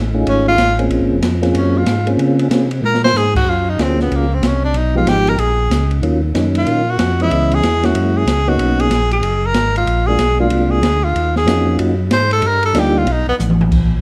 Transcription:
Already playing: A1
0.14 A3 C#4 D#4 F4 G#4
0.26 G#1 C#4, ride
0.49 F4
0.57 A1, snare, hi-hat pedal, ride
0.79 A#3 C4 C#4 F4 G#4, ride
0.89 A#1, ride
1.00 G#1
1.11 F1
1.22 F2, snare, hi-hat pedal, ride
1.42 A#3 C4 C#4 F4 G#4, snare, ride
1.54 F#2 C#4, ride
1.78 F4
1.86 G#2, snare, hi-hat pedal, ride
2.07 A#3 C4 C#4 F4 G#4, ride
2.17 C#3, ride
2.39 ride
2.50 C3 A#3 C4 C#4 F4 G#4, snare, hi-hat pedal, ride
2.71 ride
2.82 A#2 A#4, high tom
2.94 snare
3.04 C5, snare
3.14 G#2 G#4, snare, hi-hat pedal
3.35 F#4, kick, crash
3.46 F#2 F4
3.69 D#4
3.78 D2 F#3 A#3 C#4 F4 G#4, snare, hi-hat pedal, ride
3.83 C4
4.00 B3, snare
4.11 C#2, ride
4.16 A#3
4.34 C4
4.42 C2, snare, hi-hat pedal, ride
4.47 C#4
4.65 D4
4.73 B1, ride
4.78 D#4
4.95 F3 G#3 B3 D#4 F4 G4
5.05 G#1 G4, snare, hi-hat pedal, ride
5.27 A#4, ride
5.37 A#1 G#4, ride
5.70 C#2, snare, hi-hat pedal, ride
5.91 ride
6.02 D#2 D#3 F#3 A#3 C#4 F4, ride
6.35 F#2 D#3 F#3 A#3 C#4 D#4, snare, hi-hat pedal, ride
6.55 F4, ride
6.66 A#2, ride
6.91 F#4
6.99 F2, snare, hi-hat pedal, ride
7.20 E3 G#3 B3 C#4 E4 D#5, ride
7.31 C#2, ride
7.51 G#4, ride
7.63 E2, snare, hi-hat pedal, ride
7.83 F#3 G#3 A#3 C#4 E4 F#4, snare, ride
7.95 F#2, ride
8.17 G#4
8.26 C#2, snare, hi-hat pedal, ride
8.48 F#3 A#3 B3 C#4 D#4 F#4
8.58 B1, ride
8.80 G#4, ride
8.90 A#1, snare, hi-hat pedal, ride
9.11 G#4, ride
9.22 F#1, ride
9.46 A#4
9.54 G#1, snare, hi-hat pedal, ride
9.76 F4, ride
9.86 A#1, ride
10.07 F#3 G#3 A#3 D4 F4 G#4
10.19 B1, snare, hi-hat pedal, ride
10.40 F#3 G#3 A#3 D4 F4
10.50 C2, ride
10.71 G#4
10.82 D2, snare, hi-hat pedal, ride
11.04 F4
11.15 D#2, ride
11.36 G#4, snare
11.46 F2 A#3 C#4 D#4 F4 F#4, snare, hi-hat pedal, ride
11.79 F#2, ride
12.10 G#2 C5, snare, hi-hat pedal, ride
12.31 A4, ride
12.42 G2, ride
12.47 A#4
12.63 A4, ride
12.73 D2 G3 A#3 D4 D#4 F4, snare, hi-hat pedal, ride
12.80 G4
12.98 F4
13.06 B1, ride
13.12 D#4
13.27 B1 B3
13.39 A1, hi-hat pedal, mid tom
13.50 mid tom
13.61 floor tom
13.71 A#1, kick, crash

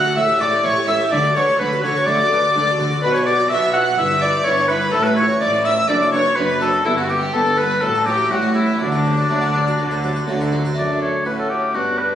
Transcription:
Already playing: D2 F#5 F#6
0.05 F#4 A4
0.15 A1 A2 A4 E5 E6
0.27 G4
0.39 A1 A2 A4 D5 D6
0.51 G4
0.63 A1 A2 A3 A4 C#5 C#6
0.75 G4
0.87 A1 A2 C#4 A4 E5 E6
0.99 G4
1.11 D2 D3 A4 D5 D6
1.24 F#4 A4
1.35 D2 D3 A4 B4 C#5 C#6
1.48 F#4 A4
1.59 D2 D3 D4 A4 B4 B5
1.72 F#4 A4
1.83 D2 D3 F#4 A4 C#5 C#6
1.96 F#4 A4
2.06 D2 D3 A3 A4 D5 D6
2.20 F#4 A4
2.31 D2 D3 A4 B4
2.44 F#4 A4
2.55 D2 D3 D4 A4
2.68 F#4 A4
2.79 D2 D3 F#4 A4
2.91 F#4 A4
3.02 B1 B2 F#4 B4 B5
3.14 F#4 C#5 C#6
3.25 F#4 G4 D5 D6
3.39 F#4
3.49 B1 B2 B3 F#4 E5 E6
3.62 F#4
3.74 B3 F#4 F#5 F#6
3.87 F#4
3.97 G1 G2 E4 E5 E6
4.11 G4
4.21 E4 A4 D5 D6
4.34 G4
4.44 G1 G2 B3 E4 C#5 C#6
4.57 G4
4.68 E4 B4 B5
4.81 G4
4.92 A1 A2 E4 A4 A5
5.03 E4 B4 B5
5.16 E4 F#4 C#5 C#6
5.29 E4
5.40 A1 A2 A3 E4 D5 D6
5.54 E4
5.65 A3 E4 E5 E6
5.77 E4
5.89 F#1 F#2 D4 D5 D6
6.02 A4
6.12 D4 B4 C#5 C#6
6.25 A4
6.36 F#1 F#2 D4 B4 B5
6.49 A4
6.61 D4 F#4 A4 A5
6.72 A4
6.85 G1 G2 B3 E4 E5
6.97 D4 F#4 F#5
7.09 B3 E4 G4 G5
7.21 D4
7.33 G1 G2 B3 A4 A5
7.46 D4
7.57 B3 B4 B5
7.70 D4
7.81 A1 A2 F#3 A4 A5
7.95 F#4
8.05 F#3 G4 G5
8.18 F#4
8.29 A1 A2 G3 F#4 F#5
8.41 C#4
8.54 G3 D4 E4 E5
8.66 C#4
8.79 D2 D3 F#3 D4 D5
8.92 F#4
9.05 F#3 G4
9.17 F#4
9.29 D2 D3 F#3 A3
9.41 F#4
9.54 F#3 D4
9.67 F#4
9.78 D2 D3 F#3
9.91 F#4
10.03 F#3 G4
10.16 F#4
10.27 D2 D3 F#3 A3
10.41 F#4
10.52 F#3 D4
10.65 F#4
10.73 A3 D4
10.77 F#2 A4 D5 A5
11.02 C#5
11.26 A2 C#4 F#4 B4 A5
11.39 A4
11.50 G4
11.74 G2 B3 D4 F#4 D6
11.98 B4

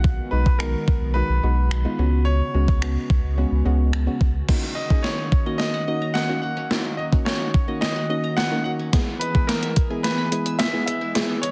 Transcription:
Already playing: B1 D#3 G#3 B3 D#4 F#4
0.04 kick
0.31 B1 G#3 B3 D#4 F#4 B4
0.46 kick
0.59 G#3 B3 D#4 F#4 A#4, finger snap
0.88 B1, kick
1.01 B1
1.14 G#3 B3 D#4 F#4 B4
1.29 B1
1.43 B1 G#3 B3 D#4 F#4
1.71 finger snap
1.85 G#3 B3 D#4 F4
1.99 C#2 C#3 G#3 B3 C#4 F#4
2.25 C#5
2.54 C#2 G#3 B3 C#4 F#4
2.68 kick
2.82 G#3 B3 C#4 F#4, finger snap
3.10 C#2, kick
3.24 C#2
3.38 G#3 B3 C#4 F#4
3.52 C#2
3.65 C#2 G#3 B3 C#4 F#4
3.93 finger snap
4.07 G#3 B3 C#4 F#4
4.21 C#2, kick
4.48 D#3 A#3 C#4 D#4 F#4, kick, snare, crash
4.63 A#3
4.75 F#3 D#5
4.90 A#3 C#4 D#4 G#4, kick
5.03 C#5, snare
5.18 D#4
5.32 C#4, kick
5.46 A#3 C#4 D#4 F#4 D#5
5.58 D#4 D#5, snare
5.74 F#5
5.87 A#3 C#4 D#4 F#4 D#5
6.02 A#5
6.14 D#3 F#5, snare
6.29 A#3 C#4 D#4 F#4
6.42 F#3 F#5
6.57 C#4
6.71 D#3 A#3 C#4 D#4 F#4, snare
6.85 A#3
6.97 F#3 D#5
7.12 A#3 C#4 D#4 F#4, kick
7.25 C#5, snare
7.41 D#4
7.54 C#4, kick
7.68 A#3 C#4 D#4 F#4 D#5
7.81 D#4 D#5, snare
7.96 F#5
8.09 A#3 C#4 D#4 F#4 D#5
8.24 A#5
8.37 D#3 F#5, snare
8.51 A#3 C#4 D#4 F#4
8.64 F#3 F#5
8.79 C#4
8.93 E3 G#3 B3 E4 G#4, kick, snare, closed hi-hat
9.07 B3
9.19 G#3 B4, closed hi-hat
9.34 G#3 B3 E4 G#4, kick
9.47 A#4, snare, closed hi-hat
9.63 E5, closed hi-hat
9.76 E4, kick, closed hi-hat
9.90 G#3 B3 E4 G#4 G#5
10.03 B4 E5, snare, closed hi-hat
10.18 B5
10.32 G#3 B3 E4 G#4 G#5, closed hi-hat
10.46 E6, closed hi-hat
10.59 E3 E5, snare, closed hi-hat
10.73 G#3 B3 E4 G#4
10.86 G#3 E5, closed hi-hat
11.01 E4
11.15 E3 G#3 B3 E4 G#4, snare, closed hi-hat
11.29 B3
11.42 G#3 C#5, closed hi-hat

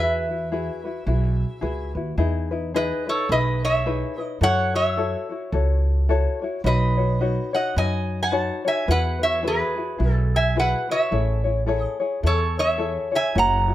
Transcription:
Already playing: E2 E4 F#4 G#4 B4 E5
0.00 B4
0.29 E4 F#4 B4
0.52 E4 F#4 G#4 B4
0.84 E4 F#4 B4
1.06 B1 E4 F#4 G#4 B4
1.61 C#2 E4 F#4 G#4 B4
1.95 D#2 E4 F#4 B4
2.18 E2 D#4 E4 G#4 B4
2.51 D#4 E4 B4
2.74 D#4 E4 G#4 B4 D#5
3.07 D#4 E4 A4 B4 C#5
3.29 B1 D#4 E4 G#4 B4 D#5
3.65 C#5 E5
3.85 D#4 E4 G#4 B4
4.18 D#4 E4 B4 D#5
4.41 F#2 E4 F#4 A4 C#5 F#5
4.73 E4 F#4 C#5 E5
4.97 E4 F#4 A4 C#5
5.30 E4 F#4 C#5
5.52 C#2 E4 F#4 A4 C#5
6.09 E4 F#4 A4 C#5
6.42 E4 F#4 C#5
6.64 B1 D#4 F#4 B4 C#5 D#5
6.97 D#4 F#4 C#5
7.21 D#4 F#4 B4 C#5
7.53 D#4 F#4 C#5 D#5 F#5
7.76 F#2 D#4 F#4 B4 C#5 D#5 G#5
8.23 F#5 G#5
8.31 D#4 F#4 B4 C#5 A5
8.65 D#4 F#4 C#5 E5 G#5
8.87 E2 E4 F#4 G#4 B4 F#5
8.92 B4
9.19 E4 F#4 B4
9.23 C#5 E5
9.42 E4 F#4 G#4 B4
9.48 G#4 B4
9.76 E4 F#4 B4
9.98 B1 E4 F#4 G#4 B4
10.13 A4
10.36 E5 G#5
10.56 E4 F#4 G#4 B4 F#5
10.60 B4
10.89 E4 F#4 B4 C#5 E5
11.11 A1 E4 G#4 A4 C#5
11.44 E4 G#4 C#5
11.66 E4 G#4 A4 C#5
11.81 D#5
12.00 E4 G#4 C#5
12.23 E2 E4 G#4 A4 C#5
12.27 C#5
12.59 C#5 E5
12.78 E4 G#4 A4 C#5
13.11 E4 G#4 C#5 E5
13.16 G#5
13.35 F#1 E4 F#4 A#4 C#5 F#5
13.39 A#5
13.68 E4 F#4 C#5

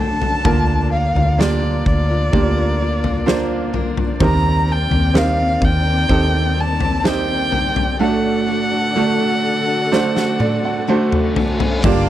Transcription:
Already playing: D2 D3 F#3 A3 D4 F#4 A4
0.00 D4 F#4 A4 A5
0.21 D4 F#4 A4, floor tom
0.44 D2 D3 A#3 D4 F4 A#4 D5, kick, floor tom
0.91 A#3 D4 F4 A#4 F5
1.15 D2 D4 F4 A#4, floor tom
1.38 D3 A#3 D4 F4 G4 A#4 D5, snare
1.62 D4 F4 A#4
1.86 D2 D5, kick
2.09 D4 F4 A#4
2.33 D2 A#3 D4 F4 G4, kick, floor tom
2.56 D4 F4 A#4
2.80 A#3 D4 F4 A#4
3.03 D4 F4 A#4, floor tom
3.26 D3 A#3 D4 F4 A#4 C5, snare
3.73 A#3 D4 F4 A#4, floor tom
3.97 floor tom
4.20 D#2 D#3 G3 C4 D#4 G4 A#4, kick, floor tom
4.25 A#5
4.67 G3 C4 G4 A#4
4.72 G5
4.91 D#2 C4 G4 A#4, floor tom
5.14 D#3 G3 C4 D#4 G4 A#4 F5, snare
5.38 C4 G4 A#4
5.62 D#2 G5, kick
5.85 C4 G4 A#4
6.09 D#2 C4 D#4 G4 A4, kick
6.32 C4 G4 A#4
6.56 G3 C4 G4 A#4
6.60 A5
6.80 C4 G4 A#4, floor tom
7.03 D#3 G3 C4 D#4 G4 A#4 C5 G5, snare
7.51 G3 C4 G4 A#4, floor tom
7.76 floor tom
7.99 A2 D3 A3 D4 F#4 A4 F#5
8.47 A3 D4 F#4 A4
8.71 D4 F#4 A4
8.95 D3 A3 D4 F#4 A4
9.19 D4 F#4 A4
9.66 D4 F#4 A4
9.92 A3 D4 F#4 C5, snare, reverse cymbal
10.15 D4 F#4 A4, snare
10.39 A3 D4 F#4 A4 D5, high tom
10.63 D4 F#4 A4 F#5
10.87 D3 A3 D4 F#4 A4 C5 A5
11.12 mid tom
11.36 A3 D4 F#4 A4, floor tom
11.60 floor tom
11.83 G1 G2 D3 G3 A#3 D4 F4 G4 A#4 D5 F5, kick, floor tom, crash

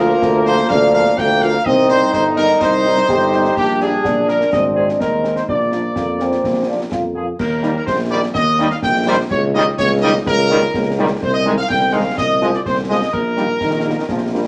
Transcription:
Already playing: D2 F3 A#3 F4 A#4
0.22 D2, concert bass drum, snare
0.45 F3 A#3 F4 C5, snare
0.59 snare
0.69 D2 D4 F5, concert bass drum, snare
0.93 F3 A#3 F4 F5
1.06 snare
1.18 D2 A#3 G5, concert bass drum, snare
1.41 F3 A#3 F4 F5, snare
1.54 snare
1.65 C2 G3 C4 D#4 D#5, concert bass drum
1.89 G3 D#4 C5, snare
2.13 G1 D#4 C5, concert bass drum, snare
2.37 G3 D#4 A#4, snare
2.49 snare
2.61 C2 C5, concert bass drum, snare
2.85 G3 D#4
2.97 snare
3.09 G1 G4, concert bass drum, snare
3.33 G3 D#4, snare
3.44 snare
3.56 A#1 G3 D4 G4, concert bass drum, crash
3.80 G3 A#3 D4 G#4, snare
4.04 A#1 D4, concert bass drum, snare
4.28 G3 A#3 D4 A#4, snare
4.41 snare
4.52 G#1 G#3 C4 D#5, concert bass drum, snare
4.75 G#3 C4 G#4
4.89 snare
5.00 D#2 D#4 A#4, concert bass drum, snare
5.24 G#3 C4, snare
5.36 C5, snare
5.47 A#1 F3 A#3 D4 D5, concert bass drum
5.72 F3 A#3 F4, snare
5.96 F2 A#3, concert bass drum, snare
6.19 F3 A#3 C4 F4, snare
6.32 snare
6.43 A#1, concert bass drum, snare
6.67 F3 A#3 D4 F4
6.91 F2 F4, concert bass drum, snare
7.15 F3 A#3 F4 G#4
7.39 D#2 A#4, concert bass drum, crash
7.62 D#3 G3 A#3 D#4, snare
7.76 A#4
7.86 A#1 C5, concert bass drum, snare
8.10 D#3 G3 A#3 D#4 D5
8.34 D#2 D#5, concert bass drum, snare
8.58 D#3 G3 A#3 D#4, snare
8.71 F5, snare
8.82 A#1 G5, concert bass drum, snare
9.06 D#3 G3 A#3 D#4 C5
9.30 C#2 C#5, concert bass drum, crash
9.54 D#3 G3 A#3 D#4 D#5, snare
9.78 C#2 C#5, concert bass drum, snare
10.02 D#3 G3 A#3 D#4 D#5
10.26 C#2 A#4, concert bass drum, snare
10.49 D#3 G3 A#3 D#4, snare
10.62 snare
10.74 C#2, concert bass drum, snare
10.97 D#3 G3 A#3 D#4
11.22 C2 C5, concert bass drum, crash
11.33 D#5
11.45 D#3 G#3 C4 D#4, snare
11.58 F5
11.69 C2 G5, concert bass drum, snare
11.93 D#3 G#3 C4 D#4 F5
12.17 C2 D#5, concert bass drum, snare
12.41 F3 G#3 C4 F4, snare
12.54 D5, snare
12.65 C2 C5, concert bass drum, snare
12.89 F3 G#3 C4 F4 D#5
13.13 A#1 A#4, concert bass drum, crash
13.36 D#3 G3 A#3 D#4 G4, snare
13.61 A#1 D#3, concert bass drum, snare
13.84 A#3 D#4 G4
13.99 D#3
14.09 A#1 F3, concert bass drum, snare
14.32 G3 A#3 D4 F4

